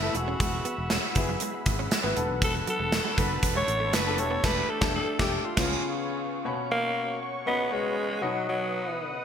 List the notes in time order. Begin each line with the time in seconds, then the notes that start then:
Already playing: E3 A3 B3 E4 A4 E5 B5 E6
0.02 A3 B3 E4 A4
0.14 E1 E3 B3 E4 F#4 G#4 F#5, muted clean electric guitar stroke, closed hi-hat
0.28 C#4
0.40 E1 G#3, kick, closed hi-hat
0.53 muted clean electric guitar stroke
0.65 B3, closed hi-hat
0.78 E1
0.90 C#4, snare, closed hi-hat
1.15 F#1 B3 E4 F#4 G#4, muted clean electric guitar stroke, kick, closed hi-hat
1.29 F#3
1.40 G#3, closed hi-hat
1.54 muted clean electric guitar stroke
1.66 G#1, kick, closed hi-hat
1.79 C#4
1.91 muted clean electric guitar stroke, snare, closed hi-hat
2.03 G#1 B3 E4 F#4 B4
2.16 E1 E3 A3 B3 D4 F#4 A4 A5, closed hi-hat
2.29 B1
2.42 E1 A4, kick, closed hi-hat
2.55 muted clean electric guitar stroke
2.67 F#3 A4, closed hi-hat
2.79 E1 G#3
2.92 muted clean electric guitar stroke, snare, closed hi-hat
3.05 G#3
3.17 F#1 F#3 B3 D4 F#4 A4 B4, kick, closed hi-hat
3.43 E1, kick, closed hi-hat
3.55 G#3 C#5
3.67 A1, muted clean electric guitar stroke, closed hi-hat
3.80 A3
3.92 F#1 A3 B4, snare, closed hi-hat
4.06 B3 D4 F#4 A4
4.17 E1 E3 A3 D4 G4 A4 C#5 D5 G5, muted clean electric guitar stroke, closed hi-hat
4.31 B3
4.43 E1 A3 D4 G4 A4 B4, kick, snare, crash
4.70 A4
4.81 E1 A3 D4 G4 A4, kick, snare
4.95 A4
5.19 E1 A3 D4 G4 A4, kick, snare
5.44 F4 B4 F5 G#5 C#6
5.57 C#2 C#3 B3 C#4 F4, kick, snare, crash
5.64 G#4
6.45 B2 C#4 F#4 C#5 F#5 B5 C#6
6.71 A#3
7.46 B3 C#4 F#4 B4 D#5
7.71 G#3 B3 C#4 F#4 B4 C#5
8.21 B2 F#3 B3 D#4 F#4 B4 D#5 D#6
8.49 F#3